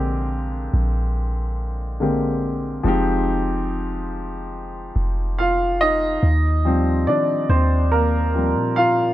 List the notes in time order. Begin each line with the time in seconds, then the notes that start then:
Already playing: A#1 D3 G#3 A#3 C4 G4
0.74 A#1
2.00 D3 G#3 A#3 C4 G4
2.83 F1 F3 G#3 C4 D#4
2.88 G4
4.96 F1
5.39 F4 F5
5.81 D#4 D#5
6.23 D#2
6.65 F3 G3 C4
7.07 D#3 D4 D5
7.50 D#2 C4 C5
7.92 A#3 A#4
8.34 F3 G3 C4
8.55 A#2
8.76 F4 F5